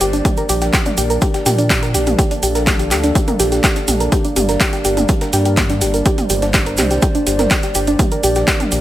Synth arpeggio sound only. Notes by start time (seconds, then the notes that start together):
0.01 G4
0.13 D4
0.25 G4
0.37 A#4
0.49 G4
0.62 G4
0.73 G4
0.86 D4
0.98 G4
1.10 A#4
1.22 G4
1.34 G4
1.46 G4
1.58 D4
1.70 G4
1.83 A#4
1.94 G4
2.07 G4
2.19 G4
2.31 D4
2.43 G4
2.55 A#4
2.67 G4
2.79 G4
2.91 G4
3.04 D4
3.15 G4
3.28 A#4
3.40 G4
3.52 G4
3.64 G4
3.76 D4
3.88 G4
4.00 A#4
4.12 G4
4.25 D4
4.36 G4
4.49 A#4
4.60 G4
4.73 G4
4.85 G4
4.97 D4
5.09 G4
5.21 A#4
5.33 G4
5.46 G4
5.57 G4
5.70 D4
5.81 G4
5.94 A#4
6.06 G4
6.18 G4
6.30 G4
6.42 D4
6.54 G4
6.66 A#4
6.78 G4
6.91 G4
7.02 G4
7.15 D4
7.27 G4
7.39 A#4
7.51 G4
7.63 G4
7.75 G4
7.88 D4
7.99 G4
8.12 A#4
8.24 G4
8.36 G4
8.48 G4
8.60 D4
8.72 G4